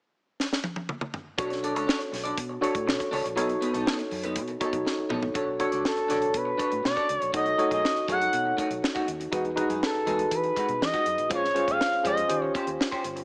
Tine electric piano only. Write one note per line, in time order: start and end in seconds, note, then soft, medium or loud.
1.38 2.07 D4 medium
1.38 2.07 F#4 medium
1.38 2.08 A4 medium
1.38 2.08 C#5 medium
2.61 3.14 D4 medium
2.61 3.14 F#4 medium
2.61 3.14 A4 medium
2.61 3.14 C#5 medium
3.36 4.06 D#4 medium
3.36 4.06 F#4 medium
3.36 4.06 A4 medium
3.36 4.06 C#5 medium
4.61 5.13 D#4 medium
4.61 5.13 F#4 medium
4.61 5.13 A4 medium
4.61 5.13 C#5 medium
5.35 5.52 D4 medium
5.35 5.53 F#4 medium
5.35 5.53 A4 medium
5.35 5.53 C#5 medium
5.60 5.94 D4 medium
5.60 5.95 F#4 medium
5.60 5.95 A4 medium
5.60 5.95 C#5 medium
6.09 6.79 D4 medium
6.09 6.79 F#4 medium
6.09 6.79 A4 medium
6.09 6.79 C#5 medium
7.34 7.51 D#4 medium
7.34 7.51 F#4 medium
7.34 7.51 A4 soft
7.34 7.51 C#5 medium
7.58 7.93 D#4 medium
7.58 7.93 F#4 medium
7.58 7.93 A4 medium
7.58 7.93 C#5 medium
8.08 8.78 D#4 medium
8.08 8.78 F#4 medium
8.08 8.78 A4 medium
8.08 8.78 C#5 medium
9.31 9.49 D#4 medium
9.31 9.50 F#4 medium
9.31 9.50 G#4 medium
9.31 9.50 B4 medium
9.56 9.91 D#4 medium
9.56 9.91 F#4 medium
9.56 9.91 G#4 medium
9.56 9.92 B4 medium
10.06 10.76 D#4 medium
10.06 10.76 F#4 medium
10.06 10.76 G#4 medium
10.06 10.76 B4 medium
11.29 11.47 C#4 medium
11.29 11.47 F4 medium
11.29 11.48 G#4 medium
11.29 11.48 C5 medium
11.54 11.90 C#4 medium
11.54 11.90 F4 medium
11.54 11.90 G#4 medium
11.54 11.90 C5 medium
12.03 12.27 C#4 medium
12.03 12.27 F4 medium
12.03 12.29 G#4 medium
12.03 12.28 C5 medium
12.28 13.09 C#4 medium
12.28 13.09 F4 medium
12.28 13.09 G4 medium
12.28 13.09 C5 medium